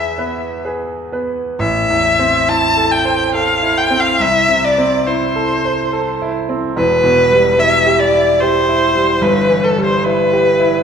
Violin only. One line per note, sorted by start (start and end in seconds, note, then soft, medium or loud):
0.00 0.65 E5 medium
1.60 2.50 E5 loud
2.48 2.93 A5 loud
2.92 3.34 G5 medium
3.35 3.79 F5 medium
3.77 4.02 G5 loud
4.00 4.23 F5 medium
4.22 4.66 E5 loud
4.64 5.09 D5 medium
5.07 6.34 C5 medium
6.77 7.61 B4 loud
7.59 8.01 E5 medium
7.99 8.42 D5 medium
8.40 9.24 C5 medium
9.22 9.65 B4 medium
9.64 9.84 A4 medium
9.84 10.06 C5 medium
10.04 10.83 B4 loud